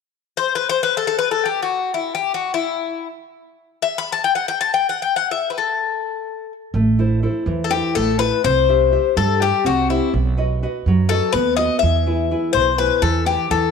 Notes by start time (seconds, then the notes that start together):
0.37 C5
0.55 B4
0.69 C5
0.83 B4
0.97 A4
1.07 A4
1.19 B4
1.31 A4
1.45 G4
1.62 F#4
1.94 E4
2.15 G4
2.34 F#4
2.54 E4
3.82 E5
3.98 B5
4.12 A5
4.24 G5
4.35 F#5
4.48 G5
4.61 A5
4.74 G5
4.89 F#5
5.02 G5
5.16 F#5
5.31 E5
5.50 B4
5.58 A4
6.74 A1 A3
6.99 E4 A4 C5
7.23 E4 A4 C5
7.46 E2 E3
7.64 A4
7.70 E4 G4 A4 C5
7.95 A1 A3 A4
8.18 E4 A4 B4 C5
8.44 C2 C4 C5
8.69 G4 C5 E5
8.92 G4 C5 E5
9.16 G2 G3 A4
9.40 G4 C5 E5
9.64 C2 C4 F#4
9.89 E4 G4 C5 E5
10.13 B1 B3
10.37 F#4 B4 D#5
10.63 F#4 B4 D#5
10.86 F#2 F#3
11.09 F#4 A4 B4 D#5
11.32 D#2 B3 B4
11.56 F#4 B4 D#5
11.79 E2 E3 E5
12.06 E4 G#4 B4
12.31 E4 G#4 B4
12.53 B1 B2 C5
12.78 E4 G#4 B4
13.02 E2 E3 A4
13.26 E4 G4 G#4 B4
13.50 E2 E3 A4